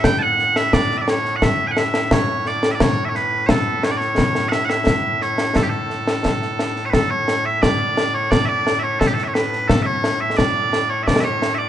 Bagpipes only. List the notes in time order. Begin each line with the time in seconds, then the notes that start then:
Already playing: A2
0.04 G5
0.18 F#5 A5
0.56 E5
0.73 D5
0.97 E5
1.01 D5
1.09 C#5
1.36 F#5
1.43 E5
1.67 F#5 G#5
1.78 E5
2.12 C#5
2.47 D5
2.71 D5 E5
2.81 C#5
3.05 E5
3.09 C#5
3.16 B4
3.46 A4 C#5
3.84 C#5
3.91 D5
3.97 C#5
4.49 E5 F#5
4.65 F#5
4.70 E5
5.22 C#5
5.56 A4
5.63 G4
5.69 A4
6.85 C#5
6.90 B4
6.94 A4
7.10 C#5
7.45 E5
7.62 D5
8.14 C#5
8.30 D5
8.45 D5 E5
8.79 C#5 E5
9.00 A4
9.07 G4
9.14 A4
9.24 C#5 E5
9.34 B4
9.68 A4
9.82 C#5 E5
10.20 E5
10.37 D5
10.89 C#5
11.03 E5
11.07 D5
11.20 C#5 E5
11.54 D5 E5